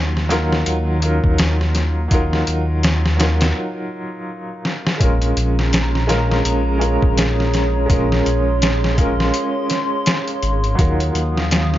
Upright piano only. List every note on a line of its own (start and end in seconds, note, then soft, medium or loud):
0.00 0.26 F#3 medium
0.00 0.26 D#4 medium
0.00 0.27 F4 medium
0.00 0.28 A#4 medium
0.29 0.98 F#3 loud
0.29 0.99 D#4 medium
0.29 0.99 F4 medium
0.29 1.00 A#4 loud
1.00 2.06 F#3 medium
1.00 2.07 D#4 medium
1.00 2.08 F4 medium
1.05 2.09 A#4 medium
2.08 3.14 F#3 medium
2.08 3.15 D#4 medium
2.08 3.16 F4 medium
2.14 3.17 A#4 medium
3.17 4.95 F#3 medium
3.17 4.96 D#4 medium
3.17 4.97 F4 medium
3.22 4.98 A#4 medium
4.98 6.04 G#3 medium
4.98 6.05 C#4 medium
4.98 6.06 F4 medium
5.03 6.07 A#4 medium
6.07 6.76 G#3 loud
6.07 6.77 C#4 medium
6.07 6.77 F4 medium
6.07 6.78 A#4 loud
6.78 7.84 G#3 medium
6.78 7.85 C#4 medium
6.78 7.86 F4 medium
6.83 7.87 A#4 medium
7.86 8.92 G#3 medium
7.86 8.94 C#4 medium
7.86 8.94 F4 medium
7.91 8.95 A#4 medium
8.95 10.73 G#3 medium
8.95 10.74 C#4 medium
8.95 10.75 F4 medium
9.00 10.76 A#4 medium
10.75 11.78 F#3 medium
10.75 11.78 D#4 medium
10.75 11.78 F4 medium
10.80 11.78 A#4 medium